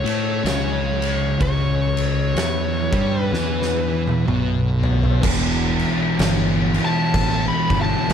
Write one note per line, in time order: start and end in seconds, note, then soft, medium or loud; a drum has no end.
0.00 0.43 A3 loud
0.00 1.41 C#5 loud
0.04 0.41 A2 medium
0.04 ride medium
0.44 1.36 C#2 loud
0.44 1.39 C#3 loud
0.44 snare loud
0.44 ride medium
1.02 ride medium
1.40 2.32 C#2 loud
1.40 2.35 C#3 loud
1.40 3.21 C#5 medium
1.40 kick loud
1.40 ride medium
1.97 ride medium
2.35 2.88 E2 medium
2.35 2.90 E3 loud
2.35 snare loud
2.35 ride loud
2.92 3.29 G2 medium
2.92 3.31 G3 loud
2.92 kick loud
2.92 ride medium
3.21 4.24 B4 medium
3.31 4.23 E2 medium
3.31 4.26 E3 loud
3.31 snare medium
3.62 snare medium
4.07 high tom medium
4.27 5.19 B1 loud
4.27 5.21 B2 loud
4.27 mid tom medium
4.83 floor tom medium
5.03 floor tom medium
5.22 5.82 E1 medium
5.22 7.72 E2 loud
5.22 7.67 B2 loud
5.22 7.69 E3 loud
5.22 kick loud
5.22 crash loud
5.22 crash medium
5.79 crash medium
6.19 6.78 G1 medium
6.19 snare loud
6.19 crash loud
6.73 8.09 E2 medium
6.73 8.07 B2 medium
6.73 8.12 E3 medium
6.73 crash medium
6.85 7.45 A5 medium
7.14 7.49 A1 medium
7.14 kick loud
7.14 crash loud
7.48 7.78 B5 medium
7.70 7.94 G1 medium
7.70 8.08 E2 medium
7.70 8.07 B2 medium
7.70 8.10 E3 medium
7.70 kick loud
7.70 crash medium
7.82 8.11 A5 medium
8.08 8.13 D2 loud
8.08 8.13 E2 medium
8.08 8.13 B2 medium
8.08 crash loud